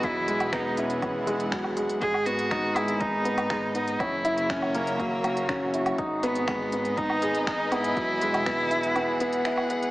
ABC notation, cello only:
X:1
M:4/4
L:1/8
Q:1/4=121
K:G#m
V:1 name="Cello"
E2 D C2 z3 | G F2 E D3 D | E2 C2 A,3 z | z B,3 D2 D E- |
E6- E z |]